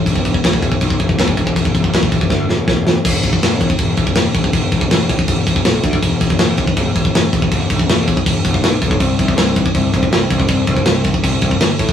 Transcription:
<<
  \new Staff \with { instrumentName = "Picked electric bass" } { \clef bass \time 4/4 \key c \major \tempo 4 = 161 e,,4 e,,4 b,,8 e,,8 e,,8 e,,8 | e,,8 e,,8 e,,8 e,,8 d,8 e,,8 e,,4 | \key e \minor e,,8 e,,8 e,,4 e,,8 e,,8 e,,8 e,,8 | e,,8 e,,8 e,,4 e,,8 e,,8 b,,8 d,8 |
e,,8 e,,8 e,,4 e,,8 e,,8 e,,8 e,,8 | e,,8 e,,8 e,,4 e,,8 e,,8 b,,8 b,,8 | c,8 c,8 c,4 c,8 c,8 c,8 c,8 | c,8 c,8 c,4 c,8 c,8 g,,8 a,8 | }
  \new DrumStaff \with { instrumentName = "Drums" } \drummode { \time 4/4 <cymc bd>16 bd16 <cymc bd>16 bd16 <cymc bd sn>16 bd16 <cymc bd>16 bd16 <cymc bd>16 bd16 <cymc bd>16 bd16 <cymc bd sn>16 bd16 <cymc bd>16 bd16 | <cymc bd>16 bd16 <cymc bd>16 bd16 <cymc bd sn>16 bd16 <cymc bd>16 bd16 <bd sn>8 sn8 <bd sn>8 sn8 | <cymc bd>8 <cymc bd>16 bd16 <cymc sn>8 <cymc bd>16 bd16 <cymc bd>8 <cymc bd>16 bd16 <cymc sn>8 <cymc bd>16 bd16 | <cymc bd>8 <cymc bd>16 bd16 <cymc sn>8 <cymc bd>16 bd16 <cymc bd>8 <cymc bd>16 bd16 <cymc sn>8 <cymc bd>16 bd16 |
<cymc bd>8 <cymc bd>16 bd16 <cymc sn>8 <cymc bd>16 bd16 <cymc bd>8 <cymc bd>16 bd16 <cymc sn>8 <cymc bd>16 bd16 | <cymc bd>8 <cymc bd>16 bd16 <cymc sn>8 <cymc bd>16 bd16 <cymc bd>8 <cymc bd>16 bd16 <cymc sn>8 <cymc bd>16 bd16 | <cymc bd>8 <cymc bd>16 bd16 <cymc sn>8 <cymc bd>16 bd16 <cymc bd>8 <cymc bd>16 bd16 <cymc sn>8 <cymc bd>16 bd16 | <cymc bd>8 <cymc bd>16 bd16 <cymc sn>8 <cymc bd>16 bd16 <cymc bd>8 <cymc bd>16 bd16 <cymc sn>8 <cymc bd>16 bd16 | }
>>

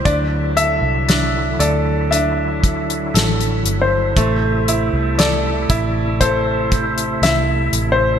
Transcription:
<<
  \new Staff \with { instrumentName = "Grand piano" } { \time 4/4 \key d \mixolydian \tempo 4 = 59 d''8 e''4 d''8 e''4 \tuplet 3/2 { r4 c''8~ } | c''4 d''4 c''4 \tuplet 3/2 { e''8. r16 c''8 } | }
  \new Staff \with { instrumentName = "Grand piano" } { \time 4/4 \key d \mixolydian d'8 a'8 d'8 a'8 d'4 a'4 | a8 e'8 a'8 e'8 a'4 e'4 | }
  \new Staff \with { instrumentName = "Tonewheel organ" } { \time 4/4 \key d \mixolydian e'1~ | e'1 | }
  \new Staff \with { instrumentName = "Tonewheel organ" } { \clef bass \time 4/4 \key d \mixolydian <d fis>1 | <c a>1 | }
  \new Staff \with { instrumentName = "Fingered electric bass" } { \clef bass \time 4/4 \key d \mixolydian d,8. c,8. d,4. a,,8 g,,8 | a,,8. c,8. a,,4. c,8 a,,8 | }
  \new DrumStaff \with { instrumentName = "Drums" } \drummode { \time 4/4 <hh bd>8 hh8 <hh sn>8 hh8 hh8 <hh bd>16 hh16 <hh sn>16 hh16 hh8 | <hh bd>8 hh8 <hh sn>8 <hh bd>8 <hh bd>8 <hh bd>16 hh16 <hh sn>8 hh8 | }
>>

